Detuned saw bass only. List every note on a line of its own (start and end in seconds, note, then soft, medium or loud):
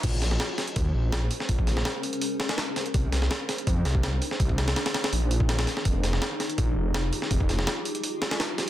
0.04 0.38 A#1 loud
0.76 0.93 D#2 loud
0.94 1.29 A#1 loud
1.49 1.84 A#1 loud
2.94 3.29 C2 loud
3.67 3.84 F2 loud
3.85 4.20 C2 loud
4.40 4.75 C2 loud
5.13 5.66 A#1 medium
5.85 6.20 F1 loud
6.58 6.74 A#1 loud
6.76 7.11 F1 loud
7.31 7.66 F1 loud